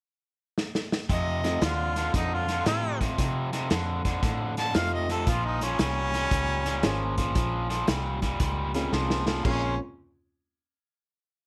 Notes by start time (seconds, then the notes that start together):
0.58 snare
0.75 snare
0.92 snare
1.09 F2 C3 D#5, kick, snare, closed hi-hat
1.44 F2 C3 F3 A3 C4 D#4 F4, snare, closed hi-hat
1.61 D#2 F2 D3 F4, snare, closed hi-hat
1.96 F2 D3, snare, closed hi-hat
2.13 F2 D3 D#4, kick, snare, closed hi-hat
2.34 F4
2.48 F2 D3, snare, closed hi-hat
2.66 F2 A2 C3 F4, snare, closed hi-hat
3.01 F2 C3, kick, snare, closed hi-hat
3.18 F2 C3, kick, snare, closed hi-hat
3.53 F2 C3, snare, closed hi-hat
3.70 F2 D3, snare, closed hi-hat
4.05 F2 D3, kick, snare, closed hi-hat
4.23 F2 A2 D3, kick, snare, closed hi-hat
4.57 F2 D3 A5, snare, closed hi-hat
4.75 F2 C3 F3 A3 C4 D#4 F4 F5, snare, closed hi-hat
4.94 D#5
5.09 F2 C3 A4, snare, closed hi-hat
5.27 A#1 A#2 F3 F4, kick, snare, closed hi-hat
5.46 D#4
5.61 A#2 F3 C#4, snare, closed hi-hat
5.79 C2 A#2 G3 C#4, snare, closed hi-hat
6.14 A#2 G3, snare, closed hi-hat
6.31 C#2 A#2 G3, kick, snare, closed hi-hat
6.66 A#2 G3, snare, closed hi-hat
6.83 G#1 A#2 F3 G#3 A#3 C#4 F4 C5, snare, closed hi-hat
7.18 A#2 F3, kick, snare, closed hi-hat
7.35 A#1 A#2 F3, kick, snare, closed hi-hat
7.69 A#2 F3, snare, closed hi-hat
7.87 C2 A#2 G3, snare, closed hi-hat
8.22 A#2 G3, kick, snare, closed hi-hat
8.40 C#2 A#2 G3, kick, snare, closed hi-hat
8.74 A#2 G3 G#3 A#3 C4 C#4 F4, snare, closed hi-hat
8.93 C2 A#2 F3, snare
9.10 snare
9.27 A#2 F3, snare
9.44 A#1 G#3 A#3 C4 C#4 F4 G#4 C5, kick, crash